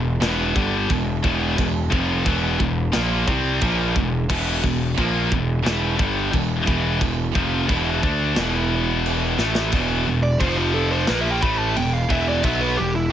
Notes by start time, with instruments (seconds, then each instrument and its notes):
Already playing: picked electric bass E1, distorted electric guitar E2 B2
0.21 picked electric bass E1, distorted electric guitar E2 B2 E3, snare, china
0.56 picked electric bass G1, distorted electric guitar G2 D3 G3, kick
0.89 picked electric bass E1, distorted electric guitar E2 B2, kick, china
1.23 picked electric bass E1, distorted electric guitar E2 B2 E3, kick
1.58 picked electric bass E1, distorted electric guitar E2 B2, kick, china
1.90 picked electric bass F1, distorted electric guitar F2 C3 F3, kick
2.25 picked electric bass E1, distorted electric guitar E2 B2 E3, kick, china
2.58 picked electric bass E1, distorted electric guitar E2 B2, kick
2.92 picked electric bass A#1, distorted electric guitar A#2 F3 A#3, snare, china
3.27 picked electric bass C2, distorted electric guitar C3 G3 C4, kick
3.61 picked electric bass A#1, distorted electric guitar A#2 F3 A#3, kick, china
3.95 picked electric bass E1, distorted electric guitar E2 B2, kick
4.30 picked electric bass E1, distorted electric guitar E2 B2 E3, kick, crash, china
4.64 picked electric bass E1, distorted electric guitar E2 B2, kick
4.98 picked electric bass A#1, distorted electric guitar A#2 F3 A#3, kick, china
5.31 picked electric bass E1, distorted electric guitar E2 B2, kick
5.64 picked electric bass E1, distorted electric guitar E2 B2 E3, snare, china
5.98 picked electric bass G1, distorted electric guitar G2 D3 G3, kick
6.32 picked electric bass E1, distorted electric guitar E2 B2, kick, china
6.66 picked electric bass E1, distorted electric guitar E2 B2 E3, kick
7.00 picked electric bass E1, distorted electric guitar E2 B2, kick, china
7.35 picked electric bass F1, distorted electric guitar F2 C3 F3, kick
7.68 picked electric bass E1, distorted electric guitar E2 B2 E3, kick, china
8.02 picked electric bass D2, distorted electric guitar D3 A3 D4, kick
8.36 picked electric bass E1, distorted electric guitar E2 B2 E3, snare, china
9.06 china
9.38 picked electric bass A1, distorted electric guitar A2 E3 A3, snare
9.55 snare
9.72 picked electric bass E1, distorted electric guitar E2 B2 E3, kick, crash
10.07 picked electric bass E1, distorted electric guitar E2 B2
10.23 lead electric guitar D5
10.39 picked electric bass F1, distorted electric guitar F2 C3 F3, lead electric guitar C5, kick, crash
10.57 lead electric guitar F4
10.74 lead electric guitar A4
10.92 lead electric guitar C5
11.07 picked electric bass A#1, distorted electric guitar A#2 F3 A#3, lead electric guitar B4, snare, crash
11.21 lead electric guitar E5
11.32 lead electric guitar G5
11.41 picked electric bass A1, distorted electric guitar A2 E3 A3, lead electric guitar B5, kick
11.59 lead electric guitar A5
11.75 picked electric bass E1, distorted electric guitar E2 B2, lead electric guitar G5, crash
11.93 lead electric guitar F5
12.09 picked electric bass E1, distorted electric guitar E2 B2 E3, lead electric guitar E5, kick
12.29 lead electric guitar D5
12.43 picked electric bass B1, distorted electric guitar B2 F#3 B3, lead electric guitar E5, kick, crash
12.61 lead electric guitar B4
12.77 picked electric bass E1, distorted electric guitar E2 B2, lead electric guitar G4
12.95 lead electric guitar E4